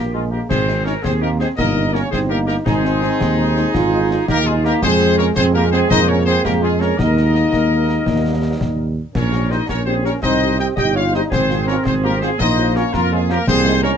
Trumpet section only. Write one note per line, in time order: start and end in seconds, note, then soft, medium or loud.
0.14 0.22 G#4 medium
0.14 0.20 A#4 soft
0.32 0.40 A#4 medium
0.49 0.83 C5 medium
0.85 0.93 C#5 medium
1.04 1.12 C5 medium
1.21 1.30 A#4 medium
1.39 1.48 C5 medium
1.57 1.91 D#5 loud
1.93 2.12 C#5 medium
2.11 2.19 C5 loud
2.29 2.38 A#4 medium
2.47 2.55 A#4 medium
2.66 4.24 G#4 loud
4.29 4.47 A#4 loud
4.46 4.64 G#4 medium
4.65 4.73 A#4 loud
4.82 5.16 C5 loud
5.18 5.26 C#5 loud
5.35 5.44 C5 loud
5.54 5.71 A#4 medium
5.71 5.79 C5 loud
5.90 6.07 D#5 loud
6.08 6.26 C#5 loud
6.25 6.43 C5 loud
6.44 6.52 A#4 medium
6.63 6.80 G#4 medium
6.81 6.99 C#5 medium
6.97 8.96 D#5 loud
9.15 9.49 C#5 loud
9.51 9.69 D#5 medium
9.69 9.86 C#5 medium
9.86 9.94 C5 medium
10.05 10.13 C#5 medium
10.22 10.56 D#5 loud
10.60 10.68 G5 loud
10.78 10.95 G5 loud
10.96 11.12 F5 medium
11.15 11.23 D#5 medium
11.33 11.66 C5 loud
11.67 11.75 C#5 medium
11.85 11.93 C5 medium
12.04 12.21 A#4 medium
12.21 12.29 C5 medium
12.39 12.73 D#5 loud
12.75 12.93 C#5 medium
12.94 13.12 A#4 loud
13.13 13.30 G#4 medium
13.31 13.48 A#4 loud
13.48 13.81 C5 loud
13.83 13.91 C#5 loud